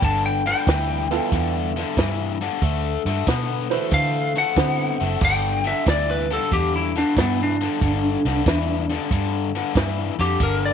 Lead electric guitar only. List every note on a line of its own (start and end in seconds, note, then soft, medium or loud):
0.05 0.24 A5 medium
0.26 0.46 G5 medium
0.47 1.72 G5 medium
3.94 4.35 F5 medium
4.38 5.21 F#5 medium
5.25 5.65 G5 medium
5.67 5.87 E5 medium
5.90 6.09 D5 medium
6.11 6.30 B4 medium
6.33 6.53 A4 medium
6.53 6.73 G4 medium
6.76 6.95 E4 medium
6.98 7.17 D4 medium
7.20 7.39 B3 medium
7.43 9.31 D4 medium
10.21 10.41 G4 medium
10.43 10.63 A#4 medium
10.65 10.73 D5 medium